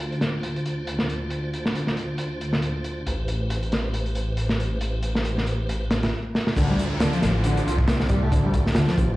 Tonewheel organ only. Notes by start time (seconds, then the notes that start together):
Already playing: D3 D4 F4 C5
3.06 A3 G4 B4
6.56 D3 D4 F4 C5